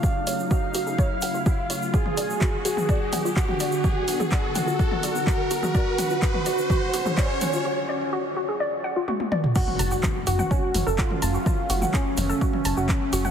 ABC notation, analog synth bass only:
X:1
M:4/4
L:1/16
Q:1/4=126
K:F#m
V:1 name="Analog synth bass" clef=bass
z2 F,,, z3 F,,, z3 F,,, F,,, z2 F,,, z | z2 B,,, z3 B,,, z3 B,,, B,,, z2 B,,, z | z2 B,,, z3 B,,, z3 B,,, B,,, z2 B,,, z | z2 B,,, z3 B,,, z3 B,,, B,,, z2 B,,, z |
z16 | z2 F,,, z3 F,,, z3 F,,, F,,, z2 F,,, z | z2 F,,, z3 F,,, z3 F,,, F,,, z2 F,,, z |]